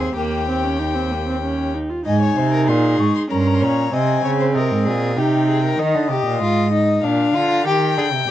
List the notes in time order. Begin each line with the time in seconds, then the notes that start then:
Already playing: D#2 C4 G#4 C6
0.16 D#2 A#3 G4 G5
0.48 C4
0.64 C#4
0.79 D#4
0.95 C4
1.11 A#3
1.27 C4
1.42 C#4
1.74 D#4
1.90 F4
2.05 G#2 D#4 D#5 G#5
2.21 C#5
2.37 C3 C5
2.52 A#4
2.68 A#2 G#4 C6
2.99 G#2 C#6
3.15 C6
3.30 G2 C#4 A#4 A#5
3.39 C6
3.47 A#5
3.54 C6
3.62 A#2 C#5 A#5
3.93 C3 C4 D#5 G#5
4.24 C#3 C#5
4.40 C5
4.55 C3 A#4 D#5
4.71 G#2
4.86 A#2 G#4
5.17 C3 D#4 G4 G5
5.48 G#4
5.64 A#4
5.79 D#3 D#4 D#5
5.95 D3
6.10 C3 G4
6.26 A#2
6.41 G#2 F4
6.73 D#4
7.03 A#2 D4 F5
7.34 D3 F4
7.65 D#3 G4 G5
7.97 D3 G#4
8.13 C3